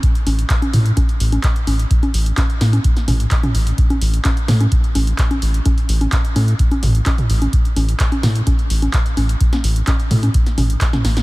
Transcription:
<<
  \new Staff \with { instrumentName = "Analog synth bass" } { \clef bass \time 4/4 \key c \major \tempo 4 = 128 r8 a,,8 r8 a,8 r8 a,,8 r8 a,,8 | r8 a,,8 r8 a,8 r8 a,,8 r8 a,,8 | r8 a,,8 r8 a,8 r8 a,,8 r8 a,,8 | r8 a,,8 r8 a,8 r8 a,,8 r8 a,,8 |
r8 a,,8 r8 a,8 r8 a,,8 r8 a,,8 | r8 a,,8 r8 a,8 r8 a,,8 r8 a,,8 | }
  \new DrumStaff \with { instrumentName = "Drums" } \drummode { \time 4/4 <hh bd>16 hh16 <cgho hho>16 hh16 <hc hh bd>16 <cgho hh>16 <hho toml>16 hh16 <cgho hh bd>16 hh16 hho16 <cgho hh>16 <hc hh bd>16 hh16 <cgho hho>16 hh16 | <hh bd>16 <cgho hh>16 hho16 hh16 <hc cgho hh bd>16 hh16 <hho sn>16 <cgho hh>16 <hh bd>16 <hh sn>16 <cgho hho toml>16 hh16 <hc hh bd>16 <cgho hh toml>16 hho16 hh16 | <hh bd>16 <cgho hh>16 hho16 hh16 <hc cgho hh bd>16 hh16 <hho sn toml>16 <cgho hh>16 <hh bd>16 hh16 <cgho hho>16 hh16 <hc hh bd>16 <cgho hh>16 hho16 hh16 | <cgho hh bd>16 hh16 hho16 <cgho hh>16 <hc hh bd>16 hh16 <cgho hho>16 hh16 <hh bd>16 <cgho hh>16 <hho toml>16 hh16 <hc cgho hh bd>16 <hh toml>16 hho16 <cgho hh>16 |
<hh bd>16 hh16 <cgho hho>16 hh16 <hc hh bd>16 <cgho hh>16 <hho sn toml>16 hh16 <cgho hh bd>16 hh16 hho16 <cgho hh>16 <hc hh bd>16 hh16 <cgho hho>16 hh16 | <hh bd>16 <cgho hh sn>16 hho16 hh16 <hc cgho hh bd>16 hh16 <hho toml>16 <cgho hh>16 <hh bd>16 <hh sn>16 <cgho hho toml>16 hh16 <hc hh bd>16 <cgho hh sn toml>16 <hho sn>16 <hh sn>16 | }
>>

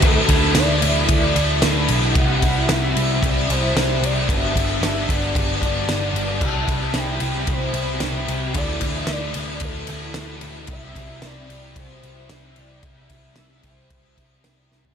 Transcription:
<<
  \new Staff \with { instrumentName = "Soft synth lead" } { \time 4/4 \key c \major \tempo 4 = 112 a'4 d''4 d''4. r8 | fis''4 e''4 d''8 c''4 d''8 | e''4 e''8 d''4 d''4. | a''4 g''4 c''4 r4 |
d''8. e''16 d''4 a'4 r4 | e''4 d''4 c''4 e''8 d''8 | e''4 e''8 c''4. r4 | }
  \new Staff \with { instrumentName = "Overdriven electric guitar" } { \time 4/4 \key c \major <d e a e'>8 <e a e'>8 <d e a e'>8 <e a e'>4 <e a e'>8 <d e a e'>4 | <c g c' e'>8 <g c' e'>8 <c g c' e'>8 <g c' e'>4 <g c' e'>8 <c g c' e'>4 | <g, d g b d'>8 <g b d'>8 <d g b d'>8 <g b d'>4 <g b d'>8 <d g b d'>4 | <c g c' e'>8 <g c' e'>8 <c g c' e'>8 <g c' e'>4 <g c' e'>8 <c g c' e'>4 |
<d e a e'>8 <e a e'>8 <d e a e'>8 <e a e'>4 <e a e'>8 <d e a e'>4 | <c g c' e'>8 <g c' e'>8 <c g c' e'>8 <g c' e'>4 <g c' e'>8 <c g c' e'>4 | <c g c' e'>8 <g c' e'>8 <c g c' e'>8 <g c' e'>4 <g c' e'>8 <c g c' e'>4 | }
  \new Staff \with { instrumentName = "Picked electric bass" } { \clef bass \time 4/4 \key c \major d,8 d,8 d,8 d,8 d,8 d,8 d,8 b,,8 | c,8 c,8 c,8 c,8 c,8 c,8 c,8 c,8 | g,,8 g,,8 g,,8 g,,8 g,,8 g,,8 g,,8 g,,8 | c,8 c,8 c,8 c,8 c,8 c,8 c,8 c,8 |
d,8 d,8 d,8 d,8 d,8 d,8 d,8 d,8 | c,8 c,8 c,8 c,8 c,8 c,8 c,8 c,8 | c,8 c,8 c,8 c,8 c,8 c,8 c,8 c,8 | }
  \new DrumStaff \with { instrumentName = "Drums" } \drummode { \time 4/4 <bd cymr>8 <bd cymr>8 <cymr sn>8 cymr8 <bd cymr>8 cymr8 <cymr sn>8 cymr8 | <bd cymr>8 <bd cymr>8 <cymr sn>8 cymr8 <bd cymr>8 cymr8 <cymr sn>8 cymr8 | <bd cymr>8 <bd cymr>8 <cymr sn>8 <bd cymr>8 <bd cymr>8 <bd cymr>8 <cymr sn>8 cymr8 | <cymc bd>8 <bd cymr>8 <cymr sn>8 cymr8 <bd cymr>8 cymr8 <cymr sn>8 cymr8 |
<bd cymr>8 <bd cymr>8 <cymr sn>8 cymr8 <bd cymr>8 cymr8 <cymr sn>8 cymr8 | <bd cymr>8 <bd cymr>8 <cymr sn>8 cymr8 <bd cymr>8 cymr8 <cymr sn>8 cymr8 | <bd cymr>8 <bd cymr>8 <cymr sn>8 <bd cymr>8 <bd cymr>8 <bd cymr>8 <cymr sn>8 sn16 tomfh16 | }
>>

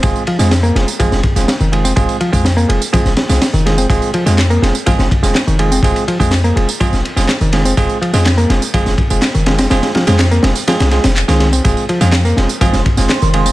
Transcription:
<<
  \new Staff \with { instrumentName = "Ambient pad" } { \time 4/4 \key f \minor \tempo 4 = 124 r1 | r1 | r1 | r1 |
r1 | r1 | <aes' c'' f'' c'''>1 | }
  \new Staff \with { instrumentName = "Tine electric piano" } { \time 4/4 \key f \minor <aes c' f' aes'>8 r16 <aes c' f' aes'>16 r8 <aes c' f' aes'>16 r16 <aes c' f' aes'>8 r16 <aes c' f' aes'>16 r8 <aes c' f' aes'>8 | <aes c' f' aes'>8 r16 <aes c' f' aes'>16 r8 <aes c' f' aes'>16 r16 <aes c' f' aes'>8 r16 <aes c' f' aes'>16 r8 <aes c' f' aes'>8 | <aes c' f' aes'>8 r16 <aes c' f' aes'>16 r8 <aes c' f' aes'>16 r16 <aes c' f' aes'>8 r16 <aes c' f' aes'>16 r8 <aes c' f' aes'>8 | <aes c' f' aes'>8 r16 <aes c' f' aes'>16 r8 <aes c' f' aes'>16 r16 <aes c' f' aes'>8 r16 <aes c' f' aes'>16 r8 <aes c' f' aes'>8 |
<aes c' f' aes'>8 r16 <aes c' f' aes'>16 r8 <aes c' f' aes'>16 r16 <aes c' f' aes'>8 r16 <aes c' f' aes'>16 r8 <aes c' f' aes'>8 | <aes c' f' aes'>8 r16 <aes c' f' aes'>16 r8 <aes c' f' aes'>16 r16 <aes c' f' aes'>8 <aes c' f' aes'>16 r8 <aes c' f' aes'>8 r16 | <aes c' f' aes'>8 r16 <aes c' f' aes'>16 r8 <aes c' f' aes'>16 r16 <aes c' f' aes'>8 r16 <aes c' f' aes'>16 r8 <aes c' f' aes'>8 | }
  \new Staff \with { instrumentName = "Picked electric bass" } { \clef bass \time 4/4 \key f \minor r8 f16 aes16 r16 bes16 r8 f16 r4 ees8 c'16 | r8 f16 aes16 r16 bes16 r8 f16 r4 ees8 c'16 | r8 f16 aes16 r16 bes16 r8 f16 r4 ees8 c'16 | r8 f16 aes16 r16 bes16 r8 f16 r4 ees8 c'16 |
r8 f16 aes16 r16 bes16 r8 f16 r4 ees8 c'16 | r8 f16 aes16 r16 bes16 r8 f16 r4 ees8 c'16 | r8 f16 f8 bes16 r8 f16 r4 ees8 c'16 | }
  \new Staff \with { instrumentName = "808-style bass" } { \clef bass \time 4/4 \key f \minor f,,16 r8 f,8. f,,16 r16 f,,16 f,,16 r16 f,,16 r16 f,,8. | f,,16 r8 f,8. f,,16 r8 f,,16 r16 c,16 r16 f,,8. | f,,16 r8 f,8. f,,16 r16 f,,16 f,,16 r16 f,,16 r16 f,,8. | f,,16 r8 f,8. f,,16 r8 f,,16 r16 f,,16 r16 f,,8. |
f,,16 r8 f,8. f,,16 r16 f,,16 f,,16 r16 f,,16 r16 f,,8. | f,,16 r8 f,8. f,,16 r8 c,8 f,,8 c,8. | f,,16 r8 f,8. f,,16 r16 f,,16 f,,16 r16 f,,16 r16 f,,8. | }
  \new DrumStaff \with { instrumentName = "Drums" } \drummode { \time 4/4 <bd cymr tamb>16 tamb16 cymr16 <sn tamb>16 <cymr sn tamb>16 tamb16 <cymr sn>16 tamb16 <bd cymr tamb>16 <sn tamb>16 <bd cymr>16 <sn tamb>16 <cymr sn tamb>16 tamb16 cymr16 tamb16 | <bd cymr tamb>16 <cymr tamb>16 cymr16 <bd tamb>16 <cymr sn tamb>16 tamb16 cymr16 tamb16 <bd cymr tamb>16 <sn tamb>16 <cymr sn>16 <sn tamb>16 <cymr sn tamb>16 tamb16 <cymr sn>16 tamb16 | <bd cymr tamb>16 tamb16 cymr16 <sn tamb>16 <hc cymr sn tamb>16 tamb16 <cymr sn>16 tamb16 <bd cymr tamb>16 <sn tamb>16 <bd cymr>16 <sn tamb>16 <hc cymr sn tamb>16 tamb16 cymr16 tamb16 | <bd cymr tamb>16 <cymr tamb>16 cymr16 <bd tamb>16 <hc cymr sn tamb>16 tamb16 cymr16 tamb16 <bd cymr tamb>16 <sn tamb>16 cymr16 <sn tamb>16 <hc cymr sn tamb>16 tamb16 <cymr sn>16 tamb16 |
<bd cymr tamb>16 tamb16 cymr16 <sn tamb>16 <hc cymr sn tamb>16 tamb16 <cymr sn>16 tamb16 <bd cymr tamb>16 <sn tamb>16 <bd cymr>16 tamb16 <hc cymr sn tamb>16 tamb16 <cymr sn>16 <cymr sn tamb>16 | <cymr sn tamb>16 <cymr sn tamb>16 <cymr sn>16 <cymr sn tamb>16 <hc cymr sn tamb>16 tamb16 <cymr sn>16 tamb16 <cymr sn tamb>16 <cymr sn tamb>16 <cymr sn>16 <cymr sn tamb>16 <hc tamb>16 <cymr sn tamb>16 <cymr sn>16 tamb16 | <bd cymr tamb>16 tamb16 cymr16 <sn tamb>16 <hc cymr sn tamb>16 tamb16 <cymr sn>16 tamb16 <bd cymr tamb>16 <sn tamb>16 <bd cymr>16 <sn tamb>16 <hc cymr sn tamb>16 tamb16 cymr16 tamb16 | }
>>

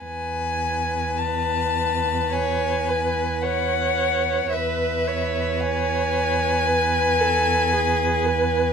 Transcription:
<<
  \new Staff \with { instrumentName = "Violin" } { \time 4/4 \key e \major \tempo 4 = 55 gis''4 a''4 gis''4 fis''4 | e''4 gis''2. | }
  \new Staff \with { instrumentName = "Viola" } { \time 4/4 \key e \major r2 cis''8 b'8 cis''4 | b'8 cis''4. b'8 a'8 gis'8 b'8 | }
  \new Staff \with { instrumentName = "Violin" } { \time 4/4 \key e \major b'1 | b'1 | }
  \new Staff \with { instrumentName = "Cello" } { \clef bass \time 4/4 \key e \major e,1 | e,1 | }
>>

